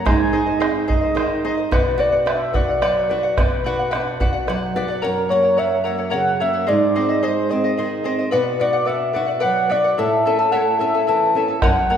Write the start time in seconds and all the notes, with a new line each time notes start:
0.05 G#2 G#4 C5 D#5 G#5, bombo rim, bombo low
0.20 bombo rim
0.33 D#4 G#4 C5 D#5
0.46 C5 D#5, bombo rim
0.60 C4 G#4 C5 D#5, bombo rim
0.88 D#4 G#4 C5 D#5, bombo rim, bombo low
1.01 C5 D#5
1.15 D#3 G#4 C5 D#5, bombo rim
1.44 D#4 G#4 C5 D#5
1.57 C5 D#5
1.71 B2 B4 D5 F#5, bombo rim, bombo low
1.86 bombo rim
1.98 F#4 B4 D5 F#5
2.12 D5 F#5, bombo rim
2.26 D4 B4 D5 E5 F#5, bombo rim
2.53 F#4 B4 D5 F#5, bombo rim, bombo low
2.68 D5 F#5
2.81 F#3 B4 D5 F#5, bombo rim
3.09 F#4 B4 D5 F#5
3.23 D5 F#5
3.37 B2 B4 D5 F#5, bombo rim, bombo low
3.64 F#4 B4 D5 F#5
3.79 D5 F#5
3.91 D4 B4 D5 F#5, bombo rim
4.20 F#4 B4 D5 F#5, bombo low
4.33 D5 F#5
4.47 F#3 B4 D5 F#5, bombo rim
4.76 F#4 B4 D5 F#5, bombo rim
4.88 D5 F#5
5.02 F#2 A#4 C#5 F#5
5.29 A#3 A#4 C#5 F#5
5.43 C#5 F#5
5.57 F#3 A#4 C#5 E5 F#5
5.84 A#3 A#4 C#5 F#5
5.98 C#5 F#5
6.10 C#3 A#4 C#5 F#5
6.40 A#3 A#4 C#5 E5 F#5
6.53 C#5 F#5
6.67 G#2 G#4 C5 D5 D#5
6.95 C4 G#4 C5 D#5
7.09 C5 D#5
7.23 G#3 G#4 C5 D#5
7.49 C4 G#4 C5 D#5
7.64 C5 D#5
7.77 D#3 G#4 C5 D#5
8.04 C4 G#4 C5 D#5
8.19 C5 D#5
8.31 B2 B4 D5 F#5
8.60 F#4 B4 D5 F#5
8.73 D5 F#5
8.85 D4 B4 D5 E5 F#5
9.13 F#4 B4 D5 F#5
9.27 D5 F#5
9.40 B4 D5 F#5
9.44 F#3
9.69 F#4 B4 D5 F#5
9.84 D5 F#5
9.98 A2 E4 A4 E5 A5
10.26 C#4 E4 A4 E5 A5
10.39 E4 A4 A5
10.52 A3 E4 A4 C#5 E5 F#5 A5
10.78 C#4 E4 A4 E5 A5
10.95 E4 A4 A5
11.07 E3 E4 A4 E5 A5
11.35 C#4 E4 A4 E5 A5
11.48 E4 A4 A5
11.60 F#2 A#4 C#5 F#5, bombo rim, bombo low
11.76 bombo rim
11.87 A#3 A#4 C#5 F#5
11.92 F#5